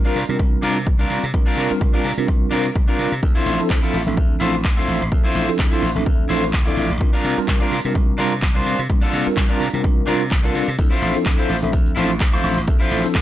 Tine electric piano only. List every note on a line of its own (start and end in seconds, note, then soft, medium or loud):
0.05 0.17 G3 medium
0.05 0.17 C4 medium
0.05 0.17 D4 medium
0.05 0.17 F4 medium
0.05 0.17 A#4 loud
0.29 0.60 G3 medium
0.29 0.60 C4 medium
0.29 0.61 D4 medium
0.29 0.61 F4 medium
0.29 0.61 A#4 medium
0.62 0.77 G3 medium
0.62 0.77 C4 medium
0.62 0.77 D4 medium
0.62 0.77 F4 medium
0.62 0.77 A#4 medium
0.99 1.19 G3 medium
0.99 1.20 C4 medium
0.99 1.20 D4 medium
0.99 1.20 F4 medium
0.99 1.20 A#4 medium
1.34 1.68 G3 medium
1.34 1.68 C4 medium
1.34 1.68 D4 medium
1.34 1.68 F4 medium
1.34 1.68 A#4 medium
1.70 1.91 G3 medium
1.70 1.91 C4 medium
1.70 1.91 D4 medium
1.70 1.91 F4 medium
1.70 1.91 A#4 medium
1.94 2.05 G3 medium
1.94 2.05 C4 medium
1.94 2.05 D4 medium
1.94 2.06 F4 medium
1.94 2.06 A#4 loud
2.17 2.49 G3 medium
2.17 2.49 C4 medium
2.17 2.50 D4 medium
2.17 2.50 F4 medium
2.17 2.50 A#4 medium
2.51 2.66 G3 medium
2.51 2.66 C4 medium
2.51 2.66 D4 medium
2.51 2.66 F4 medium
2.51 2.66 A#4 loud
2.88 3.08 G3 medium
2.88 3.08 C4 medium
2.88 3.09 D4 medium
2.88 3.09 F4 medium
2.88 3.09 A#4 medium
3.22 3.56 F3 medium
3.22 3.56 C4 medium
3.22 3.56 D4 medium
3.22 3.57 E4 medium
3.22 3.57 A4 medium
3.59 3.80 F3 medium
3.59 3.80 C4 medium
3.59 3.80 D4 medium
3.59 3.80 E4 medium
3.59 3.80 A4 medium
3.83 3.94 F3 medium
3.83 3.95 C4 medium
3.83 3.95 D4 medium
3.83 3.95 E4 medium
3.83 3.95 A4 loud
4.06 4.38 F3 medium
4.06 4.38 C4 medium
4.06 4.38 D4 medium
4.06 4.39 A4 medium
4.06 4.39 E5 medium
4.41 4.55 F3 medium
4.41 4.55 C4 medium
4.41 4.55 D4 medium
4.41 4.55 E4 medium
4.41 4.55 A4 medium
4.77 4.97 F3 medium
4.77 4.97 C4 medium
4.77 4.98 D4 medium
4.77 4.98 E4 medium
4.77 4.98 A4 medium
5.12 5.46 F3 medium
5.12 5.46 C4 medium
5.12 5.46 D4 medium
5.12 5.46 A4 medium
5.12 5.46 E5 medium
5.49 5.69 F3 medium
5.49 5.69 C4 medium
5.49 5.69 D4 medium
5.49 5.69 E4 medium
5.49 5.69 A4 loud
5.72 5.83 F3 medium
5.72 5.84 C4 medium
5.72 5.84 D4 medium
5.72 5.84 E4 medium
5.72 5.84 A4 loud
5.95 6.27 F3 medium
5.95 6.27 C4 medium
5.95 6.27 D4 medium
5.95 6.28 A4 medium
5.95 6.27 E5 medium
6.29 6.44 F3 medium
6.29 6.44 C4 medium
6.29 6.44 D4 medium
6.29 6.44 E4 medium
6.29 6.44 A4 loud
6.66 6.86 F3 medium
6.66 6.86 C4 medium
6.66 6.87 D4 medium
6.66 6.87 E4 medium
6.66 6.87 A4 medium
7.00 7.34 G3 medium
7.00 7.34 C4 medium
7.00 7.34 D4 medium
7.00 7.34 F4 medium
7.00 7.35 A#4 medium
7.37 7.58 G3 medium
7.37 7.58 C4 medium
7.37 7.58 D4 medium
7.37 7.58 F4 medium
7.37 7.58 A#4 loud
7.61 7.72 G3 medium
7.61 7.73 C4 medium
7.61 7.73 D4 medium
7.61 7.73 F4 medium
7.61 7.73 A#4 loud
7.85 8.17 G3 medium
7.85 8.17 C4 medium
7.85 8.17 D4 medium
7.85 8.17 F4 medium
7.85 8.17 A#4 loud
8.19 8.33 G3 medium
8.19 8.33 C4 medium
8.19 8.33 D4 medium
8.19 8.33 F4 medium
8.19 8.33 A#4 medium
8.55 8.75 G3 medium
8.55 8.75 C4 medium
8.55 8.75 D4 medium
8.55 8.76 F4 medium
8.55 8.76 A#4 medium
8.89 9.23 G3 medium
8.89 9.24 A#3 medium
8.89 9.23 C4 medium
8.89 9.23 D4 medium
8.89 9.24 F4 medium
9.26 9.47 G3 medium
9.26 9.47 C4 medium
9.26 9.47 D4 medium
9.26 9.47 F4 medium
9.26 9.47 A#4 medium
9.50 9.61 G3 medium
9.50 9.61 C4 medium
9.50 9.62 D4 medium
9.50 9.62 F4 medium
9.50 9.62 A#4 loud
9.73 10.05 G3 medium
9.73 10.05 C4 medium
9.73 10.05 D4 medium
9.73 10.06 F4 medium
9.73 10.06 A#4 medium
10.07 10.22 G3 medium
10.07 10.22 C4 medium
10.07 10.22 D4 medium
10.07 10.22 F4 medium
10.07 10.22 A#4 medium
10.44 10.64 G3 medium
10.44 10.64 C4 medium
10.44 10.64 D4 medium
10.44 10.64 F4 medium
10.44 10.65 A#4 medium
10.78 11.12 F3 medium
10.78 11.12 C4 medium
10.78 11.12 D4 medium
10.78 11.13 E4 medium
10.78 11.13 A4 medium
11.15 11.36 F3 medium
11.15 11.36 C4 medium
11.15 11.36 D4 medium
11.15 11.36 E4 medium
11.15 11.36 A4 medium
11.39 11.50 F3 loud
11.39 11.50 C4 medium
11.39 11.50 D4 medium
11.39 11.51 E4 medium
11.39 11.51 A4 loud
11.62 11.94 F3 medium
11.62 11.94 C4 medium
11.62 11.94 D4 medium
11.62 11.95 A4 loud
11.62 11.95 E5 medium
11.96 12.10 F3 medium
11.96 12.11 C4 medium
11.96 12.11 D4 medium
11.96 12.11 E4 medium
11.96 12.11 A4 medium
12.33 12.53 F3 medium
12.33 12.53 C4 medium
12.33 12.53 D4 medium
12.33 12.53 E4 medium
12.33 12.53 A4 medium
12.67 13.01 F3 medium
12.67 13.01 C4 medium
12.67 13.01 D4 medium
12.67 13.02 A4 medium
12.67 13.01 E5 medium
13.04 13.22 F3 medium
13.04 13.22 C4 medium
13.04 13.22 D4 medium
13.04 13.22 E4 medium
13.04 13.22 A4 medium